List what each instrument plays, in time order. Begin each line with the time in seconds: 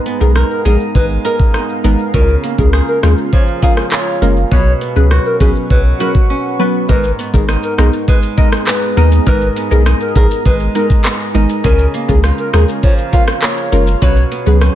Already playing: nylon-string guitar G#2 G#3 D#4, ambient pad B3 G#4 F5 A#5
0.06 nylon-string guitar B3, closed hi-hat, shaker
0.20 sub bass B1, synth stab G#3 B3 D#4 A#4, soft synth lead G#4, shaker
0.36 nylon-string guitar A#4, cross-stick, shaker
0.50 soft synth lead A#4, shaker
0.65 sub bass A#1, synth stab G#3 B3 D#4 A#4, nylon-string guitar D#4, soft synth lead G#4, closed hi-hat, shaker
0.80 shaker
0.95 sub bass G#1, nylon-string guitar G#3, soft synth lead B4, kick, shaker
1.10 shaker
1.25 synth stab G#3 B3 D#4 A#4, nylon-string guitar A#4, soft synth lead A#4, closed hi-hat, shaker
1.40 kick, shaker
1.54 nylon-string guitar D#4, cross-stick, shaker
1.69 shaker
1.84 sub bass G#1, synth stab G#3 B3 D#4 A#4, nylon-string guitar B3, closed hi-hat, shaker
1.99 shaker
2.14 sub bass C#2, nylon-string guitar C#3, synth stab G#3 C#4 F4 A#4, ambient pad G#4 C#5, soft synth lead A#4, kick, shaker
2.29 shaker
2.44 nylon-string guitar A#3, closed hi-hat, shaker
2.58 sub bass C#2, synth stab G#3 C#4 F4 A#4, soft synth lead G#4, kick, shaker
2.73 nylon-string guitar G#4, cross-stick, shaker
2.88 soft synth lead A#4, shaker
3.03 sub bass D#2, synth stab G#3 C#4 F4 A#4, nylon-string guitar F4, soft synth lead G#4, cross-stick, closed hi-hat, shaker
3.18 shaker
3.33 nylon-string guitar F3, soft synth lead C#5, kick, shaker
3.47 shaker
3.62 synth stab G#3 C#4 F4 A#4, nylon-string guitar G#4, soft synth lead F5, kick, closed hi-hat, shaker
3.77 cross-stick, shaker
3.92 nylon-string guitar F4, soft synth lead C#5, cross-stick, clap, shaker
4.07 shaker
4.22 sub bass F#1, synth stab G#3 C#4 F4 A#4, nylon-string guitar A#3, closed hi-hat, shaker
4.36 shaker
4.51 sub bass B1, nylon-string guitar B2, synth stab F#3 B3 C#4 B4, ambient pad B4 F#5 C#6, soft synth lead C#5, kick, shaker
4.66 shaker
4.81 nylon-string guitar B3, closed hi-hat, shaker
4.96 sub bass C#2, synth stab F#3 B3 C#4 B4, soft synth lead G#4, shaker
5.11 nylon-string guitar F#4, cross-stick, shaker
5.25 soft synth lead A#4, shaker
5.40 sub bass B1, synth stab F#3 B3 C#4 B4, nylon-string guitar C#4, soft synth lead G#4, kick, closed hi-hat, shaker
5.55 shaker
5.70 sub bass B1, nylon-string guitar F#3, soft synth lead B4, kick, shaker
5.85 shaker
6.00 synth stab F#3 B3 C#4 B4, nylon-string guitar F#4, soft synth lead A#4, closed hi-hat, shaker
6.15 kick, shaker
6.30 nylon-string guitar C#4
6.59 synth stab F#3 B3 C#4 B4, nylon-string guitar B3
6.89 sub bass G#1, nylon-string guitar G#2 A#4, synth stab G#3 B3 D#4 A#4, ambient pad B3 G#4 D#5 A#5, soft synth lead B4, kick, maracas, shaker
7.04 maracas, shaker
7.19 nylon-string guitar B3, closed hi-hat, shaker, maracas
7.33 sub bass G#1, synth stab G#3 B3 D#4 A#4, soft synth lead G#4, kick, maracas, shaker
7.48 nylon-string guitar D#4, cross-stick, maracas, shaker
7.63 soft synth lead A#4, maracas, shaker
7.78 sub bass B1, synth stab G#3 B3 D#4 A#4, soft synth lead G#4, cross-stick, closed hi-hat, shaker
7.93 shaker, maracas
8.08 nylon-string guitar G#3, soft synth lead B4, kick, shaker, maracas
8.23 maracas, shaker
8.37 synth stab G#3 B3 D#4 A#4, nylon-string guitar D#4, soft synth lead D#5, kick, closed hi-hat, shaker
8.52 cross-stick, maracas, shaker
8.67 nylon-string guitar B3, soft synth lead B4, cross-stick, clap, maracas, shaker
8.82 maracas, shaker
8.97 sub bass D#2, synth stab G#3 B3 D#4 A#4, nylon-string guitar D#4, closed hi-hat, shaker
9.12 shaker, maracas
9.26 sub bass G#1, nylon-string guitar G#2 A#4, synth stab G#3 B3 D#4 A#4, soft synth lead B4, kick, maracas, shaker
9.41 maracas, shaker
9.56 nylon-string guitar B3, closed hi-hat, shaker, maracas
9.71 sub bass B1, synth stab G#3 B3 D#4 A#4, soft synth lead G#4, shaker, maracas
9.86 nylon-string guitar D#4, cross-stick, maracas, shaker
10.01 soft synth lead A#4, maracas, shaker
10.15 sub bass A#1, synth stab G#3 B3 D#4 A#4, soft synth lead G#4, nylon-string guitar A#4, kick, closed hi-hat, shaker
10.31 shaker, maracas
10.46 sub bass G#1, nylon-string guitar G#3, soft synth lead B4, kick, maracas, shaker
10.60 maracas, shaker
10.75 synth stab G#3 B3 D#4 A#4, nylon-string guitar D#4, soft synth lead A#4, closed hi-hat, shaker
10.90 kick, maracas, shaker
11.04 nylon-string guitar B3, cross-stick, clap, maracas, shaker
11.20 maracas, shaker
11.34 sub bass G#1, synth stab G#3 B3 D#4 A#4, nylon-string guitar D#4, closed hi-hat, shaker
11.49 shaker, maracas
11.64 sub bass C#2, nylon-string guitar C#3 G#4, synth stab G#3 C#4 F4 A#4, soft synth lead A#4, ambient pad C#5 F5, kick, maracas, shaker
11.79 maracas, shaker
11.94 nylon-string guitar A#3, closed hi-hat, shaker, maracas
12.08 sub bass C#2, synth stab G#3 C#4 F4 A#4, soft synth lead G#4, kick, shaker, maracas
12.24 nylon-string guitar F4, cross-stick, maracas, shaker
12.38 soft synth lead A#4, maracas, shaker
12.53 sub bass D#2, synth stab G#3 C#4 F4 A#4, nylon-string guitar G#4, soft synth lead G#4, cross-stick, closed hi-hat, shaker
12.68 shaker, maracas
12.83 nylon-string guitar F3, soft synth lead C#5, kick, maracas, shaker
12.98 shaker, maracas
13.12 synth stab G#3 C#4 F4 A#4, nylon-string guitar F4, soft synth lead F5, kick, closed hi-hat, shaker
13.28 cross-stick, maracas, shaker
13.42 nylon-string guitar A#3, soft synth lead C#5, cross-stick, clap, maracas, shaker
13.57 maracas, shaker
13.72 sub bass F#1, synth stab G#3 C#4 F4 A#4, nylon-string guitar F4, closed hi-hat, shaker
13.87 shaker, maracas
14.02 sub bass B1, nylon-string guitar B2 F#4, synth stab F#3 B3 C#4 B4, ambient pad B4 C#5 F#5 C#6, soft synth lead C#5, kick, maracas, shaker
14.16 maracas, shaker
14.32 nylon-string guitar B3, closed hi-hat, shaker, maracas
14.46 sub bass C#2, synth stab F#3 B3 C#4 B4, soft synth lead G#4, maracas, shaker
14.61 nylon-string guitar C#4, cross-stick, maracas, shaker